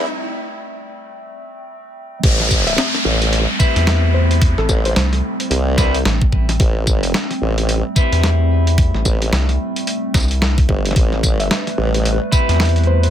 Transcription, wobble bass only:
0, 0, Header, 1, 2, 480
1, 0, Start_track
1, 0, Key_signature, 0, "minor"
1, 0, Tempo, 545455
1, 46, Time_signature, 4, 2, 24, 8
1, 11528, End_track
2, 0, Start_track
2, 0, Title_t, "Wobble bass"
2, 0, Program_c, 0, 39
2, 1967, Note_on_c, 0, 33, 97
2, 2431, Note_off_c, 0, 33, 0
2, 2685, Note_on_c, 0, 33, 98
2, 3046, Note_off_c, 0, 33, 0
2, 4126, Note_on_c, 0, 33, 97
2, 4350, Note_off_c, 0, 33, 0
2, 4845, Note_on_c, 0, 36, 97
2, 5310, Note_off_c, 0, 36, 0
2, 5806, Note_on_c, 0, 33, 100
2, 6270, Note_off_c, 0, 33, 0
2, 6527, Note_on_c, 0, 33, 99
2, 6887, Note_off_c, 0, 33, 0
2, 7966, Note_on_c, 0, 33, 97
2, 8190, Note_off_c, 0, 33, 0
2, 9405, Note_on_c, 0, 31, 97
2, 9630, Note_off_c, 0, 31, 0
2, 9645, Note_on_c, 0, 33, 97
2, 9971, Note_off_c, 0, 33, 0
2, 9971, Note_on_c, 0, 32, 97
2, 10110, Note_off_c, 0, 32, 0
2, 10367, Note_on_c, 0, 33, 95
2, 10727, Note_off_c, 0, 33, 0
2, 11528, End_track
0, 0, End_of_file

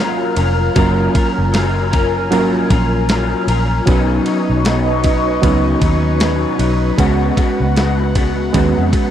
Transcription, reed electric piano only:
0, 0, Header, 1, 2, 480
1, 0, Start_track
1, 0, Key_signature, 6, "major"
1, 0, Tempo, 778210
1, 469, Time_signature, 4, 2, 24, 8
1, 5617, End_track
2, 0, Start_track
2, 0, Title_t, "Reed electric piano"
2, 0, Program_c, 0, 4
2, 0, Control_c, 0, 64, 127
2, 0, Note_on_c, 0, 54, 92
2, 0, Note_on_c, 0, 58, 82
2, 0, Note_on_c, 0, 61, 85
2, 0, Note_on_c, 0, 65, 88
2, 0, Note_on_c, 0, 70, 102
2, 329, Note_off_c, 0, 54, 0
2, 331, Note_off_c, 0, 58, 0
2, 332, Note_off_c, 0, 61, 0
2, 334, Note_off_c, 0, 65, 0
2, 337, Note_off_c, 0, 70, 0
2, 466, Note_on_c, 0, 54, 92
2, 470, Note_on_c, 0, 58, 80
2, 474, Note_on_c, 0, 61, 80
2, 476, Note_on_c, 0, 65, 82
2, 481, Note_on_c, 0, 70, 96
2, 1291, Note_off_c, 0, 54, 0
2, 1293, Note_off_c, 0, 58, 0
2, 1295, Note_off_c, 0, 61, 0
2, 1296, Note_off_c, 0, 65, 0
2, 1299, Note_off_c, 0, 70, 0
2, 1423, Note_on_c, 0, 54, 100
2, 1427, Note_on_c, 0, 58, 85
2, 1431, Note_on_c, 0, 61, 89
2, 1434, Note_on_c, 0, 65, 86
2, 1437, Note_on_c, 0, 70, 106
2, 2249, Note_off_c, 0, 54, 0
2, 2251, Note_off_c, 0, 58, 0
2, 2253, Note_off_c, 0, 61, 0
2, 2254, Note_off_c, 0, 65, 0
2, 2256, Note_off_c, 0, 70, 0
2, 2381, Note_on_c, 0, 54, 91
2, 2385, Note_on_c, 0, 59, 85
2, 2389, Note_on_c, 0, 61, 77
2, 2393, Note_on_c, 0, 63, 82
2, 2395, Control_c, 0, 64, 0
2, 2395, Note_on_c, 0, 71, 101
2, 2512, Control_c, 0, 64, 127
2, 3208, Note_off_c, 0, 54, 0
2, 3209, Note_off_c, 0, 59, 0
2, 3211, Note_off_c, 0, 61, 0
2, 3213, Note_off_c, 0, 63, 0
2, 3215, Note_off_c, 0, 71, 0
2, 3343, Note_on_c, 0, 54, 99
2, 3347, Note_on_c, 0, 59, 88
2, 3351, Note_on_c, 0, 61, 93
2, 3356, Note_on_c, 0, 63, 87
2, 3357, Note_on_c, 0, 71, 100
2, 4168, Note_off_c, 0, 54, 0
2, 4170, Note_off_c, 0, 59, 0
2, 4172, Note_off_c, 0, 61, 0
2, 4175, Note_off_c, 0, 63, 0
2, 4175, Note_off_c, 0, 71, 0
2, 4303, Note_on_c, 0, 56, 92
2, 4306, Note_on_c, 0, 59, 86
2, 4311, Note_on_c, 0, 61, 87
2, 4314, Note_on_c, 0, 66, 81
2, 4316, Control_c, 0, 64, 0
2, 4317, Note_on_c, 0, 71, 96
2, 4434, Control_c, 0, 64, 127
2, 5128, Note_off_c, 0, 56, 0
2, 5129, Note_off_c, 0, 59, 0
2, 5132, Note_off_c, 0, 61, 0
2, 5134, Note_off_c, 0, 66, 0
2, 5135, Note_off_c, 0, 71, 0
2, 5259, Note_on_c, 0, 56, 94
2, 5263, Note_on_c, 0, 59, 83
2, 5267, Note_on_c, 0, 61, 83
2, 5271, Note_on_c, 0, 66, 86
2, 5274, Note_on_c, 0, 71, 104
2, 5617, Note_off_c, 0, 56, 0
2, 5617, Note_off_c, 0, 59, 0
2, 5617, Note_off_c, 0, 61, 0
2, 5617, Note_off_c, 0, 66, 0
2, 5617, Note_off_c, 0, 71, 0
2, 5617, End_track
0, 0, End_of_file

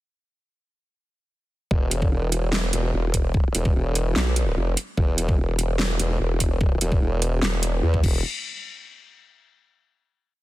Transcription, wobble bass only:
0, 0, Header, 1, 2, 480
1, 0, Start_track
1, 0, Tempo, 408163
1, 2010, Time_signature, 4, 2, 24, 8
1, 12256, End_track
2, 0, Start_track
2, 0, Title_t, "Wobble bass"
2, 0, Program_c, 0, 39
2, 2010, Note_on_c, 0, 28, 100
2, 2472, Note_off_c, 0, 28, 0
2, 2490, Note_on_c, 0, 28, 101
2, 3192, Note_off_c, 0, 28, 0
2, 3210, Note_on_c, 0, 28, 98
2, 3432, Note_off_c, 0, 28, 0
2, 3451, Note_on_c, 0, 28, 98
2, 4152, Note_off_c, 0, 28, 0
2, 4170, Note_on_c, 0, 28, 96
2, 4392, Note_off_c, 0, 28, 0
2, 4410, Note_on_c, 0, 28, 96
2, 4872, Note_off_c, 0, 28, 0
2, 4890, Note_on_c, 0, 35, 98
2, 5352, Note_off_c, 0, 35, 0
2, 5370, Note_on_c, 0, 29, 98
2, 5592, Note_off_c, 0, 29, 0
2, 5851, Note_on_c, 0, 28, 99
2, 6312, Note_off_c, 0, 28, 0
2, 6331, Note_on_c, 0, 28, 101
2, 7032, Note_off_c, 0, 28, 0
2, 7050, Note_on_c, 0, 28, 102
2, 7271, Note_off_c, 0, 28, 0
2, 7290, Note_on_c, 0, 28, 101
2, 7992, Note_off_c, 0, 28, 0
2, 8009, Note_on_c, 0, 28, 100
2, 8231, Note_off_c, 0, 28, 0
2, 8249, Note_on_c, 0, 28, 100
2, 8711, Note_off_c, 0, 28, 0
2, 8729, Note_on_c, 0, 28, 97
2, 9191, Note_off_c, 0, 28, 0
2, 9209, Note_on_c, 0, 40, 99
2, 9443, Note_off_c, 0, 40, 0
2, 9450, Note_on_c, 0, 28, 95
2, 9673, Note_off_c, 0, 28, 0
2, 12256, End_track
0, 0, End_of_file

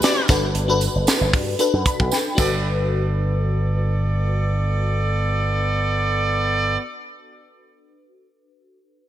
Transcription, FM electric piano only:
0, 0, Header, 1, 2, 480
1, 0, Start_track
1, 0, Key_signature, 1, "major"
1, 0, Tempo, 521739
1, 508, Time_signature, 4, 2, 24, 8
1, 8361, End_track
2, 0, Start_track
2, 0, Title_t, "FM electric piano"
2, 0, Program_c, 0, 5
2, 0, Control_c, 0, 64, 127
2, 0, Note_on_c, 0, 62, 84
2, 0, Note_on_c, 0, 66, 82
2, 0, Note_on_c, 0, 67, 79
2, 0, Note_on_c, 0, 71, 108
2, 27, Note_off_c, 0, 62, 0
2, 27, Note_on_c, 0, 62, 80
2, 29, Note_off_c, 0, 66, 0
2, 29, Note_on_c, 0, 66, 77
2, 32, Note_off_c, 0, 67, 0
2, 32, Note_on_c, 0, 67, 76
2, 36, Note_off_c, 0, 71, 0
2, 36, Note_on_c, 0, 71, 103
2, 253, Note_off_c, 0, 62, 0
2, 253, Note_off_c, 0, 66, 0
2, 263, Note_off_c, 0, 71, 0
2, 264, Note_on_c, 0, 62, 86
2, 264, Note_on_c, 0, 66, 88
2, 268, Note_on_c, 0, 69, 97
2, 269, Note_off_c, 0, 67, 0
2, 274, Note_on_c, 0, 71, 104
2, 278, Control_c, 0, 64, 0
2, 458, Control_c, 0, 64, 127
2, 557, Note_off_c, 0, 62, 0
2, 558, Note_off_c, 0, 66, 0
2, 560, Note_off_c, 0, 69, 0
2, 563, Note_off_c, 0, 71, 0
2, 626, Note_on_c, 0, 62, 91
2, 635, Note_on_c, 0, 66, 86
2, 637, Note_on_c, 0, 69, 88
2, 641, Note_on_c, 0, 71, 115
2, 1151, Note_off_c, 0, 62, 0
2, 1155, Note_off_c, 0, 66, 0
2, 1156, Note_off_c, 0, 69, 0
2, 1158, Note_off_c, 0, 71, 0
2, 1461, Note_on_c, 0, 62, 85
2, 1466, Note_on_c, 0, 66, 73
2, 1469, Note_on_c, 0, 69, 87
2, 1476, Note_on_c, 0, 71, 104
2, 1715, Note_on_c, 0, 83, 69
2, 1935, Note_off_c, 0, 83, 0
2, 1951, Note_on_c, 0, 79, 70
2, 2071, Note_off_c, 0, 62, 0
2, 2073, Note_off_c, 0, 66, 0
2, 2075, Note_off_c, 0, 69, 0
2, 2078, Note_off_c, 0, 71, 0
2, 2162, Note_on_c, 0, 62, 74
2, 2172, Note_off_c, 0, 79, 0
2, 2176, Note_on_c, 0, 66, 75
2, 2192, Note_on_c, 0, 69, 74
2, 2201, Control_c, 0, 64, 0
2, 2206, Note_on_c, 0, 71, 88
2, 2292, Control_c, 0, 64, 127
2, 2441, Control_c, 0, 64, 0
2, 2616, Control_c, 0, 64, 127
2, 6197, Note_off_c, 0, 62, 0
2, 6210, Note_off_c, 0, 66, 0
2, 6227, Note_off_c, 0, 69, 0
2, 6241, Note_off_c, 0, 71, 0
2, 8361, End_track
0, 0, End_of_file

